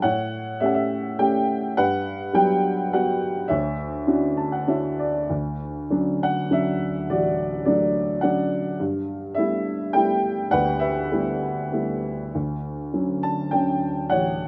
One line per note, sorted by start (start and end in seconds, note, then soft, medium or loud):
0.02 1.74 A2 medium
0.02 0.88 C#5 medium
0.02 0.57 F#5 medium
0.60 1.08 A3 soft
0.60 1.09 C#4 soft
0.60 1.09 G4 medium
0.60 0.68 E5 medium
0.66 0.74 F#5 medium
0.74 1.21 E5 medium
1.19 1.65 A3 soft
1.19 1.66 C#4 soft
1.19 1.66 G4 medium
1.19 1.60 G5 medium
1.77 3.46 G2 medium
1.77 2.60 B4 medium
1.77 2.31 F#5 medium
2.33 2.81 F#3 medium
2.33 2.81 G3 medium
2.33 2.81 B3 soft
2.33 2.95 G5 medium
2.93 3.39 G3 soft
2.93 3.39 B3 soft
2.93 3.39 F#4 medium
2.93 3.52 F#5 medium
3.48 5.27 D2 medium
3.48 4.64 C#5 medium
3.48 4.63 E5 medium
4.07 4.56 C#4 soft
4.07 4.56 D4 soft
4.07 4.56 E4 soft
4.07 4.56 F#4 medium
4.37 4.51 A5 medium
4.52 4.67 F#5 medium
4.67 5.18 D4 soft
4.67 5.19 E4 soft
4.67 5.18 F#4 soft
4.67 5.18 C#5 soft
4.67 4.98 E5 medium
4.99 5.28 D5 medium
5.30 7.06 D2 soft
5.90 6.49 F#3 soft
5.90 6.49 C#4 soft
5.90 6.49 D4 soft
6.23 6.53 F#5 medium
6.51 7.09 F#3 soft
6.51 7.09 C#4 soft
6.51 7.09 D4 soft
6.51 7.13 E5 medium
7.09 8.75 A1 soft
7.09 7.92 F#4 medium
7.09 7.64 D5 medium
7.65 8.21 F#3 soft
7.65 8.21 A3 soft
7.65 8.22 D4 soft
7.65 8.24 D5 medium
8.21 8.78 F#3 soft
8.21 8.78 C#4 soft
8.21 8.78 D4 soft
8.21 8.62 F#5 medium
8.80 10.48 G2 medium
9.35 9.93 G3 soft
9.35 9.93 A3 soft
9.35 9.93 B3 soft
9.35 9.94 E4 medium
9.35 9.96 E5 medium
9.93 10.50 G3 soft
9.93 10.51 A3 soft
9.93 10.50 B3 soft
9.93 10.51 E4 soft
9.93 10.47 G5 medium
10.51 12.31 D2 medium
10.51 10.80 B4 medium
10.51 10.82 F#5 medium
10.79 12.00 B4 soft
10.79 11.99 E5 medium
11.11 11.71 G3 soft
11.11 11.71 A3 soft
11.11 11.71 B3 soft
11.11 11.71 E4 medium
11.72 12.33 G3 soft
11.72 12.33 A3 soft
11.72 12.33 B3 soft
11.72 12.33 E4 soft
12.35 14.09 D2 soft
12.93 13.51 D3 soft
12.93 13.51 F#3 soft
12.93 13.51 C#4 soft
13.23 13.51 A5 medium
13.51 14.11 D3 soft
13.51 14.11 F#3 soft
13.51 14.11 C#4 soft
13.51 14.13 G5 medium
14.10 14.48 A1 soft
14.10 14.48 C#5 medium
14.10 14.48 F#5 medium